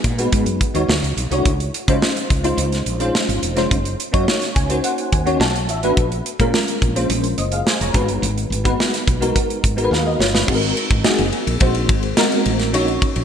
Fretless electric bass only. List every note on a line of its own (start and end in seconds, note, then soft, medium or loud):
0.04 0.27 A#2 medium
0.33 0.44 G#2 medium
0.46 0.58 F#2 medium
0.74 0.86 D#2 medium
0.88 1.00 D2 loud
1.03 1.14 C#2 medium
1.17 1.28 B1 medium
1.31 1.43 C2 medium
1.45 1.69 C#2 loud
1.88 1.99 C#3 medium
2.30 2.53 C#2 medium
2.57 2.81 C#2 medium
2.86 3.09 A#1 medium
3.29 3.40 G#1 medium
3.42 3.57 E1 medium
3.57 3.68 F1 medium
3.71 3.94 F#1 loud
4.14 4.25 F#2 medium
4.56 4.79 C#2 medium
5.12 5.36 D#2 medium
5.40 5.68 B1 loud
5.68 5.91 A1 medium
5.97 6.20 A#1 loud
6.40 6.51 A#2 loud
6.82 7.05 A#1 medium
7.10 7.33 A#1 loud
7.38 7.61 F#1 medium
7.81 7.92 F1 medium
7.94 8.08 G#1 medium
8.08 8.20 G1 medium
8.22 8.46 G#1 loud
8.50 8.74 G#1 medium
9.07 9.31 B1 medium
9.64 9.87 G#1 medium
9.91 10.15 D#2 medium
10.19 10.43 G1 medium
10.48 10.72 G#1 loud
10.91 11.02 G#1 loud
11.19 11.30 F#1 medium
11.47 11.59 A#1 medium
11.61 11.89 A#1 loud
11.89 12.12 G#1 medium
12.46 12.74 A1 medium
12.74 12.97 A#1 loud
13.16 13.24 A#1 loud